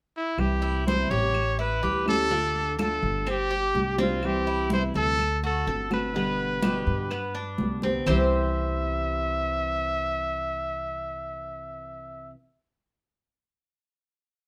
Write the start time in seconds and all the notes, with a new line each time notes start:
0.17 E4
0.38 C2 C3 E3 G3 C4 E4 G4, high conga, claves
0.62 E4, high conga
0.86 C3 E3 G3 C4 E4 C5, high conga
1.10 A1 G4 C#5, high conga
1.34 muted nylon-string guitar stroke, high conga, claves
1.59 E4 B4, high conga
1.82 D2 E3 G3 C#4 E4 G4, high conga
2.06 G3 C#4 E4 A4, high conga, claves
2.31 D3 A3 D4 F4, high conga
2.55 high conga
2.78 D3 A3 D4 F4 A4, high conga, claves
3.03 G1
3.26 C4 G4, muted nylon-string guitar stroke, high conga, claves
3.51 G4, high conga
3.74 C2 G3 C4 D4 G4, high conga
3.98 G3 C4 D4 G4, high conga
4.02 F4
4.22 C3 E3 G3 C4 E4 G4, high conga, claves
4.47 E4, high conga
4.70 C3 E3 G3 C4 E4 C5, high conga
4.94 D2 A4, high conga
5.19 muted nylon-string guitar stroke, high conga, claves
5.42 F#4 A4, high conga
5.67 G1 D3 A3 C4 F#4 A4, high conga
5.90 A3 C4 F#4 B4, high conga, claves
6.14 B2 D3 G3 B3 G4, high conga
6.39 high conga
6.63 B2 D3 G3 B3 G4, high conga, claves
6.87 G2
7.11 B3, muted nylon-string guitar stroke, high conga, claves
7.35 D4, high conga
7.58 C2 D3 G3 B3 G4, high conga
7.82 D3 G3 B3 C4 G4, high conga
8.06 C2 C3 E3 G3 C4 E4 G4 C5 E5, low conga, claves